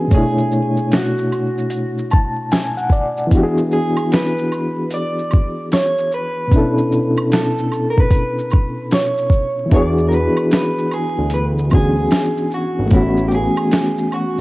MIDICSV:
0, 0, Header, 1, 5, 480
1, 0, Start_track
1, 0, Tempo, 800000
1, 70, Time_signature, 4, 2, 24, 8
1, 8645, End_track
2, 0, Start_track
2, 0, Title_t, "Clean electric guitar"
2, 0, Program_c, 0, 27
2, 0, Note_on_c, 0, 68, 94
2, 79, Note_off_c, 0, 68, 0
2, 87, Note_on_c, 0, 68, 101
2, 560, Note_on_c, 0, 66, 74
2, 573, Note_off_c, 0, 68, 0
2, 1251, Note_off_c, 0, 66, 0
2, 2238, Note_on_c, 0, 68, 89
2, 2476, Note_off_c, 0, 68, 0
2, 2479, Note_on_c, 0, 71, 89
2, 2959, Note_off_c, 0, 71, 0
2, 2962, Note_on_c, 0, 74, 104
2, 3412, Note_off_c, 0, 74, 0
2, 3440, Note_on_c, 0, 73, 105
2, 3681, Note_off_c, 0, 73, 0
2, 3684, Note_on_c, 0, 71, 102
2, 4397, Note_off_c, 0, 71, 0
2, 4399, Note_on_c, 0, 69, 90
2, 4739, Note_off_c, 0, 69, 0
2, 4742, Note_on_c, 0, 70, 75
2, 4792, Note_off_c, 0, 70, 0
2, 4799, Note_on_c, 0, 71, 90
2, 5358, Note_off_c, 0, 71, 0
2, 5360, Note_on_c, 0, 73, 98
2, 5811, Note_off_c, 0, 73, 0
2, 5844, Note_on_c, 0, 74, 106
2, 6048, Note_off_c, 0, 74, 0
2, 6051, Note_on_c, 0, 70, 66
2, 6075, Note_off_c, 0, 70, 0
2, 6084, Note_on_c, 0, 71, 84
2, 6301, Note_off_c, 0, 71, 0
2, 6321, Note_on_c, 0, 71, 90
2, 6560, Note_off_c, 0, 71, 0
2, 6562, Note_on_c, 0, 68, 88
2, 6780, Note_off_c, 0, 68, 0
2, 6803, Note_on_c, 0, 71, 96
2, 6866, Note_off_c, 0, 71, 0
2, 7047, Note_on_c, 0, 68, 104
2, 7523, Note_off_c, 0, 68, 0
2, 7525, Note_on_c, 0, 66, 85
2, 7762, Note_off_c, 0, 66, 0
2, 7765, Note_on_c, 0, 64, 90
2, 7968, Note_off_c, 0, 64, 0
2, 7971, Note_on_c, 0, 67, 69
2, 7995, Note_off_c, 0, 67, 0
2, 8008, Note_on_c, 0, 68, 89
2, 8481, Note_off_c, 0, 68, 0
2, 8484, Note_on_c, 0, 66, 83
2, 8624, Note_off_c, 0, 66, 0
2, 8645, End_track
3, 0, Start_track
3, 0, Title_t, "Reed electric piano"
3, 0, Program_c, 1, 4
3, 0, Control_c, 1, 64, 127
3, 0, Note_on_c, 1, 52, 50
3, 0, Note_on_c, 1, 59, 49
3, 0, Note_on_c, 1, 61, 44
3, 0, Note_on_c, 1, 62, 45
3, 0, Note_on_c, 1, 66, 45
3, 0, Note_on_c, 1, 71, 47
3, 46, Note_on_c, 1, 47, 64
3, 62, Note_on_c, 1, 57, 67
3, 64, Note_off_c, 1, 52, 0
3, 68, Note_off_c, 1, 59, 0
3, 71, Note_off_c, 1, 61, 0
3, 74, Note_off_c, 1, 62, 0
3, 76, Note_off_c, 1, 66, 0
3, 76, Note_on_c, 1, 73, 62
3, 77, Control_c, 1, 64, 0
3, 79, Note_off_c, 1, 71, 0
3, 92, Note_on_c, 1, 62, 57
3, 106, Note_on_c, 1, 64, 72
3, 190, Control_c, 1, 64, 127
3, 1268, Note_on_c, 1, 81, 71
3, 1492, Note_off_c, 1, 81, 0
3, 1512, Note_on_c, 1, 80, 74
3, 1658, Note_off_c, 1, 80, 0
3, 1663, Note_on_c, 1, 78, 68
3, 1742, Note_off_c, 1, 78, 0
3, 1753, Note_on_c, 1, 74, 74
3, 1954, Note_off_c, 1, 47, 0
3, 1961, Note_on_c, 1, 52, 76
3, 1962, Note_off_c, 1, 57, 0
3, 1969, Note_off_c, 1, 73, 0
3, 1974, Note_on_c, 1, 59, 72
3, 1975, Note_off_c, 1, 74, 0
3, 1977, Note_off_c, 1, 62, 0
3, 1979, Note_off_c, 1, 64, 0
3, 1986, Note_on_c, 1, 64, 67
3, 1997, Note_on_c, 1, 62, 64
3, 1999, Control_c, 1, 64, 0
3, 2009, Note_on_c, 1, 66, 69
3, 2022, Note_on_c, 1, 67, 76
3, 2057, Note_off_c, 1, 67, 0
3, 2060, Note_on_c, 1, 68, 83
3, 2091, Control_c, 1, 64, 127
3, 3872, Note_off_c, 1, 52, 0
3, 3878, Note_off_c, 1, 59, 0
3, 3884, Note_off_c, 1, 64, 0
3, 3884, Note_on_c, 1, 47, 59
3, 3890, Note_off_c, 1, 62, 0
3, 3896, Note_off_c, 1, 66, 0
3, 3896, Note_on_c, 1, 59, 66
3, 3908, Note_on_c, 1, 61, 63
3, 3919, Control_c, 1, 64, 0
3, 3919, Note_on_c, 1, 62, 69
3, 3921, Note_off_c, 1, 68, 0
3, 3933, Note_on_c, 1, 64, 63
3, 3944, Note_on_c, 1, 69, 74
3, 4026, Control_c, 1, 64, 127
3, 5793, Note_off_c, 1, 47, 0
3, 5795, Note_on_c, 1, 52, 68
3, 5799, Note_off_c, 1, 59, 0
3, 5805, Note_off_c, 1, 61, 0
3, 5808, Note_on_c, 1, 59, 58
3, 5811, Note_off_c, 1, 62, 0
3, 5811, Note_off_c, 1, 64, 0
3, 5818, Note_on_c, 1, 64, 64
3, 5823, Note_off_c, 1, 69, 0
3, 5831, Note_on_c, 1, 62, 70
3, 5839, Control_c, 1, 64, 0
3, 5842, Note_on_c, 1, 66, 62
3, 5856, Note_on_c, 1, 68, 81
3, 5958, Control_c, 1, 64, 127
3, 6989, Note_off_c, 1, 52, 0
3, 6995, Note_off_c, 1, 59, 0
3, 7000, Note_off_c, 1, 64, 0
3, 7007, Note_off_c, 1, 62, 0
3, 7012, Note_off_c, 1, 66, 0
3, 7020, Note_off_c, 1, 68, 0
3, 7021, Note_on_c, 1, 52, 44
3, 7028, Note_on_c, 1, 59, 42
3, 7033, Note_on_c, 1, 61, 42
3, 7038, Note_on_c, 1, 62, 47
3, 7045, Note_on_c, 1, 66, 45
3, 7052, Note_on_c, 1, 68, 53
3, 7717, Note_on_c, 1, 57, 71
3, 7725, Note_off_c, 1, 52, 0
3, 7732, Note_on_c, 1, 52, 57
3, 7740, Note_off_c, 1, 59, 0
3, 7748, Note_on_c, 1, 59, 64
3, 7752, Note_off_c, 1, 61, 0
3, 7754, Note_off_c, 1, 62, 0
3, 7757, Note_off_c, 1, 66, 0
3, 7758, Control_c, 1, 64, 0
3, 7761, Note_off_c, 1, 68, 0
3, 7763, Note_on_c, 1, 61, 64
3, 7778, Note_on_c, 1, 66, 75
3, 7868, Control_c, 1, 64, 127
3, 8645, Note_off_c, 1, 52, 0
3, 8645, Note_off_c, 1, 57, 0
3, 8645, Note_off_c, 1, 59, 0
3, 8645, Note_off_c, 1, 61, 0
3, 8645, Note_off_c, 1, 66, 0
3, 8645, End_track
4, 0, Start_track
4, 0, Title_t, "Analog synth bass"
4, 0, Program_c, 2, 38
4, 5832, Note_on_c, 2, 40, 97
4, 6167, Note_off_c, 2, 40, 0
4, 6711, Note_on_c, 2, 38, 86
4, 7248, Note_off_c, 2, 38, 0
4, 7674, Note_on_c, 2, 32, 86
4, 7741, Note_off_c, 2, 32, 0
4, 7752, Note_on_c, 2, 33, 110
4, 8087, Note_off_c, 2, 33, 0
4, 8645, End_track
5, 0, Start_track
5, 0, Title_t, "Drums"
5, 66, Note_on_c, 9, 82, 67
5, 67, Note_off_c, 9, 82, 0
5, 67, Note_on_c, 9, 42, 62
5, 67, Note_on_c, 9, 82, 64
5, 69, Note_on_c, 9, 36, 106
5, 127, Note_off_c, 9, 42, 0
5, 127, Note_off_c, 9, 82, 0
5, 129, Note_off_c, 9, 36, 0
5, 228, Note_on_c, 9, 82, 45
5, 288, Note_off_c, 9, 82, 0
5, 311, Note_on_c, 9, 82, 52
5, 313, Note_off_c, 9, 82, 0
5, 313, Note_on_c, 9, 82, 59
5, 373, Note_off_c, 9, 82, 0
5, 461, Note_on_c, 9, 82, 41
5, 521, Note_off_c, 9, 82, 0
5, 549, Note_on_c, 9, 42, 75
5, 549, Note_on_c, 9, 82, 75
5, 552, Note_off_c, 9, 82, 0
5, 552, Note_on_c, 9, 82, 68
5, 558, Note_on_c, 9, 38, 102
5, 609, Note_off_c, 9, 42, 0
5, 612, Note_off_c, 9, 82, 0
5, 618, Note_off_c, 9, 38, 0
5, 708, Note_on_c, 9, 82, 52
5, 768, Note_off_c, 9, 82, 0
5, 794, Note_on_c, 9, 76, 53
5, 794, Note_on_c, 9, 82, 54
5, 854, Note_off_c, 9, 76, 0
5, 854, Note_off_c, 9, 82, 0
5, 949, Note_on_c, 9, 82, 46
5, 1009, Note_off_c, 9, 82, 0
5, 1021, Note_on_c, 9, 42, 60
5, 1021, Note_on_c, 9, 82, 65
5, 1030, Note_off_c, 9, 82, 0
5, 1030, Note_on_c, 9, 82, 66
5, 1081, Note_off_c, 9, 42, 0
5, 1090, Note_off_c, 9, 82, 0
5, 1190, Note_on_c, 9, 82, 41
5, 1250, Note_off_c, 9, 82, 0
5, 1265, Note_on_c, 9, 82, 47
5, 1270, Note_off_c, 9, 82, 0
5, 1270, Note_on_c, 9, 76, 68
5, 1270, Note_on_c, 9, 82, 46
5, 1280, Note_on_c, 9, 36, 100
5, 1330, Note_off_c, 9, 76, 0
5, 1330, Note_off_c, 9, 82, 0
5, 1340, Note_off_c, 9, 36, 0
5, 1510, Note_on_c, 9, 42, 66
5, 1510, Note_on_c, 9, 82, 64
5, 1513, Note_off_c, 9, 82, 0
5, 1513, Note_on_c, 9, 82, 69
5, 1516, Note_on_c, 9, 38, 114
5, 1570, Note_off_c, 9, 42, 0
5, 1573, Note_off_c, 9, 82, 0
5, 1576, Note_off_c, 9, 38, 0
5, 1668, Note_on_c, 9, 82, 45
5, 1728, Note_off_c, 9, 82, 0
5, 1738, Note_on_c, 9, 36, 83
5, 1750, Note_on_c, 9, 82, 44
5, 1753, Note_off_c, 9, 82, 0
5, 1753, Note_on_c, 9, 82, 50
5, 1798, Note_off_c, 9, 36, 0
5, 1813, Note_off_c, 9, 82, 0
5, 1904, Note_on_c, 9, 82, 45
5, 1964, Note_off_c, 9, 82, 0
5, 1984, Note_on_c, 9, 82, 65
5, 1988, Note_off_c, 9, 82, 0
5, 1988, Note_on_c, 9, 42, 67
5, 1988, Note_on_c, 9, 82, 63
5, 1989, Note_on_c, 9, 36, 93
5, 2048, Note_off_c, 9, 42, 0
5, 2048, Note_off_c, 9, 82, 0
5, 2049, Note_off_c, 9, 36, 0
5, 2147, Note_on_c, 9, 82, 49
5, 2207, Note_off_c, 9, 82, 0
5, 2229, Note_on_c, 9, 82, 57
5, 2231, Note_off_c, 9, 82, 0
5, 2231, Note_on_c, 9, 82, 48
5, 2291, Note_off_c, 9, 82, 0
5, 2381, Note_on_c, 9, 76, 71
5, 2383, Note_on_c, 9, 82, 42
5, 2441, Note_off_c, 9, 76, 0
5, 2443, Note_off_c, 9, 82, 0
5, 2466, Note_on_c, 9, 82, 69
5, 2473, Note_off_c, 9, 82, 0
5, 2473, Note_on_c, 9, 42, 73
5, 2473, Note_on_c, 9, 82, 71
5, 2482, Note_on_c, 9, 38, 108
5, 2533, Note_off_c, 9, 42, 0
5, 2533, Note_off_c, 9, 82, 0
5, 2542, Note_off_c, 9, 38, 0
5, 2631, Note_on_c, 9, 82, 51
5, 2691, Note_off_c, 9, 82, 0
5, 2711, Note_on_c, 9, 76, 56
5, 2711, Note_on_c, 9, 82, 39
5, 2715, Note_off_c, 9, 82, 0
5, 2715, Note_on_c, 9, 82, 50
5, 2771, Note_off_c, 9, 76, 0
5, 2775, Note_off_c, 9, 82, 0
5, 2943, Note_on_c, 9, 42, 64
5, 2943, Note_on_c, 9, 82, 65
5, 2946, Note_off_c, 9, 82, 0
5, 2946, Note_on_c, 9, 82, 67
5, 3003, Note_off_c, 9, 42, 0
5, 3006, Note_off_c, 9, 82, 0
5, 3112, Note_on_c, 9, 82, 41
5, 3172, Note_off_c, 9, 82, 0
5, 3185, Note_on_c, 9, 76, 64
5, 3185, Note_on_c, 9, 82, 49
5, 3187, Note_off_c, 9, 82, 0
5, 3187, Note_on_c, 9, 82, 46
5, 3201, Note_on_c, 9, 36, 93
5, 3245, Note_off_c, 9, 76, 0
5, 3247, Note_off_c, 9, 82, 0
5, 3261, Note_off_c, 9, 36, 0
5, 3432, Note_on_c, 9, 42, 70
5, 3432, Note_on_c, 9, 82, 71
5, 3433, Note_off_c, 9, 82, 0
5, 3433, Note_on_c, 9, 82, 67
5, 3438, Note_on_c, 9, 38, 108
5, 3492, Note_off_c, 9, 42, 0
5, 3493, Note_off_c, 9, 82, 0
5, 3498, Note_off_c, 9, 38, 0
5, 3588, Note_on_c, 9, 82, 49
5, 3648, Note_off_c, 9, 82, 0
5, 3672, Note_on_c, 9, 82, 45
5, 3676, Note_off_c, 9, 82, 0
5, 3676, Note_on_c, 9, 82, 51
5, 3736, Note_off_c, 9, 82, 0
5, 3905, Note_on_c, 9, 82, 66
5, 3909, Note_off_c, 9, 82, 0
5, 3909, Note_on_c, 9, 36, 109
5, 3909, Note_on_c, 9, 42, 61
5, 3909, Note_on_c, 9, 82, 68
5, 3969, Note_off_c, 9, 36, 0
5, 3969, Note_off_c, 9, 42, 0
5, 3969, Note_off_c, 9, 82, 0
5, 4068, Note_on_c, 9, 82, 51
5, 4128, Note_off_c, 9, 82, 0
5, 4152, Note_on_c, 9, 82, 58
5, 4212, Note_off_c, 9, 82, 0
5, 4301, Note_on_c, 9, 82, 40
5, 4305, Note_on_c, 9, 76, 75
5, 4361, Note_off_c, 9, 82, 0
5, 4365, Note_off_c, 9, 76, 0
5, 4391, Note_on_c, 9, 82, 67
5, 4392, Note_off_c, 9, 82, 0
5, 4392, Note_on_c, 9, 42, 78
5, 4392, Note_on_c, 9, 82, 70
5, 4401, Note_on_c, 9, 38, 119
5, 4452, Note_off_c, 9, 42, 0
5, 4452, Note_off_c, 9, 82, 0
5, 4461, Note_off_c, 9, 38, 0
5, 4552, Note_on_c, 9, 82, 51
5, 4612, Note_off_c, 9, 82, 0
5, 4631, Note_on_c, 9, 76, 57
5, 4631, Note_on_c, 9, 82, 39
5, 4637, Note_off_c, 9, 82, 0
5, 4637, Note_on_c, 9, 82, 52
5, 4691, Note_off_c, 9, 76, 0
5, 4697, Note_off_c, 9, 82, 0
5, 4786, Note_on_c, 9, 36, 89
5, 4846, Note_off_c, 9, 36, 0
5, 4863, Note_on_c, 9, 36, 91
5, 4864, Note_on_c, 9, 42, 65
5, 4864, Note_on_c, 9, 82, 64
5, 4870, Note_off_c, 9, 82, 0
5, 4870, Note_on_c, 9, 82, 64
5, 4923, Note_off_c, 9, 36, 0
5, 4924, Note_off_c, 9, 42, 0
5, 4930, Note_off_c, 9, 82, 0
5, 5031, Note_on_c, 9, 82, 40
5, 5091, Note_off_c, 9, 82, 0
5, 5102, Note_on_c, 9, 82, 49
5, 5108, Note_off_c, 9, 82, 0
5, 5108, Note_on_c, 9, 76, 66
5, 5108, Note_on_c, 9, 82, 49
5, 5120, Note_on_c, 9, 36, 98
5, 5168, Note_off_c, 9, 76, 0
5, 5168, Note_off_c, 9, 82, 0
5, 5180, Note_off_c, 9, 36, 0
5, 5347, Note_on_c, 9, 42, 69
5, 5347, Note_on_c, 9, 82, 66
5, 5352, Note_off_c, 9, 82, 0
5, 5352, Note_on_c, 9, 82, 69
5, 5353, Note_on_c, 9, 38, 115
5, 5407, Note_off_c, 9, 42, 0
5, 5412, Note_off_c, 9, 82, 0
5, 5413, Note_off_c, 9, 38, 0
5, 5507, Note_on_c, 9, 82, 50
5, 5567, Note_off_c, 9, 82, 0
5, 5578, Note_on_c, 9, 36, 88
5, 5591, Note_on_c, 9, 82, 44
5, 5592, Note_off_c, 9, 82, 0
5, 5592, Note_on_c, 9, 82, 52
5, 5638, Note_off_c, 9, 36, 0
5, 5652, Note_off_c, 9, 82, 0
5, 5826, Note_on_c, 9, 82, 65
5, 5828, Note_off_c, 9, 82, 0
5, 5828, Note_on_c, 9, 42, 65
5, 5828, Note_on_c, 9, 82, 63
5, 5829, Note_on_c, 9, 36, 93
5, 5888, Note_off_c, 9, 42, 0
5, 5888, Note_off_c, 9, 82, 0
5, 5889, Note_off_c, 9, 36, 0
5, 5987, Note_on_c, 9, 82, 45
5, 6047, Note_off_c, 9, 82, 0
5, 6069, Note_on_c, 9, 82, 51
5, 6072, Note_off_c, 9, 82, 0
5, 6072, Note_on_c, 9, 82, 60
5, 6132, Note_off_c, 9, 82, 0
5, 6220, Note_on_c, 9, 76, 73
5, 6220, Note_on_c, 9, 82, 44
5, 6280, Note_off_c, 9, 76, 0
5, 6280, Note_off_c, 9, 82, 0
5, 6307, Note_on_c, 9, 82, 70
5, 6308, Note_off_c, 9, 82, 0
5, 6308, Note_on_c, 9, 42, 71
5, 6308, Note_on_c, 9, 82, 74
5, 6317, Note_on_c, 9, 38, 112
5, 6368, Note_off_c, 9, 42, 0
5, 6368, Note_off_c, 9, 82, 0
5, 6377, Note_off_c, 9, 38, 0
5, 6470, Note_on_c, 9, 82, 53
5, 6530, Note_off_c, 9, 82, 0
5, 6549, Note_on_c, 9, 76, 59
5, 6549, Note_on_c, 9, 82, 38
5, 6554, Note_off_c, 9, 82, 0
5, 6554, Note_on_c, 9, 82, 54
5, 6609, Note_off_c, 9, 76, 0
5, 6614, Note_off_c, 9, 82, 0
5, 6780, Note_on_c, 9, 42, 67
5, 6780, Note_on_c, 9, 82, 67
5, 6787, Note_off_c, 9, 82, 0
5, 6787, Note_on_c, 9, 82, 67
5, 6840, Note_off_c, 9, 42, 0
5, 6847, Note_off_c, 9, 82, 0
5, 6949, Note_on_c, 9, 82, 42
5, 7009, Note_off_c, 9, 82, 0
5, 7020, Note_on_c, 9, 82, 44
5, 7027, Note_off_c, 9, 82, 0
5, 7027, Note_on_c, 9, 76, 72
5, 7027, Note_on_c, 9, 82, 44
5, 7039, Note_on_c, 9, 36, 93
5, 7087, Note_off_c, 9, 76, 0
5, 7087, Note_off_c, 9, 82, 0
5, 7099, Note_off_c, 9, 36, 0
5, 7264, Note_on_c, 9, 42, 67
5, 7264, Note_on_c, 9, 82, 65
5, 7270, Note_on_c, 9, 38, 121
5, 7272, Note_off_c, 9, 82, 0
5, 7272, Note_on_c, 9, 82, 64
5, 7324, Note_off_c, 9, 42, 0
5, 7330, Note_off_c, 9, 38, 0
5, 7332, Note_off_c, 9, 82, 0
5, 7425, Note_on_c, 9, 82, 48
5, 7485, Note_off_c, 9, 82, 0
5, 7507, Note_on_c, 9, 82, 46
5, 7516, Note_off_c, 9, 82, 0
5, 7516, Note_on_c, 9, 82, 51
5, 7576, Note_off_c, 9, 82, 0
5, 7744, Note_on_c, 9, 42, 65
5, 7744, Note_on_c, 9, 82, 66
5, 7748, Note_off_c, 9, 82, 0
5, 7748, Note_on_c, 9, 36, 101
5, 7748, Note_on_c, 9, 82, 71
5, 7804, Note_off_c, 9, 42, 0
5, 7808, Note_off_c, 9, 36, 0
5, 7808, Note_off_c, 9, 82, 0
5, 7903, Note_on_c, 9, 82, 46
5, 7963, Note_off_c, 9, 82, 0
5, 7988, Note_on_c, 9, 82, 52
5, 7994, Note_off_c, 9, 82, 0
5, 7994, Note_on_c, 9, 82, 55
5, 8054, Note_off_c, 9, 82, 0
5, 8138, Note_on_c, 9, 82, 40
5, 8144, Note_on_c, 9, 76, 67
5, 8198, Note_off_c, 9, 82, 0
5, 8204, Note_off_c, 9, 76, 0
5, 8229, Note_on_c, 9, 42, 79
5, 8229, Note_on_c, 9, 82, 73
5, 8233, Note_off_c, 9, 82, 0
5, 8233, Note_on_c, 9, 82, 72
5, 8238, Note_on_c, 9, 38, 117
5, 8289, Note_off_c, 9, 42, 0
5, 8293, Note_off_c, 9, 82, 0
5, 8298, Note_off_c, 9, 38, 0
5, 8387, Note_on_c, 9, 82, 50
5, 8447, Note_off_c, 9, 82, 0
5, 8473, Note_on_c, 9, 76, 53
5, 8473, Note_on_c, 9, 82, 40
5, 8474, Note_off_c, 9, 82, 0
5, 8474, Note_on_c, 9, 82, 53
5, 8533, Note_off_c, 9, 76, 0
5, 8534, Note_off_c, 9, 82, 0
5, 8645, End_track
0, 0, End_of_file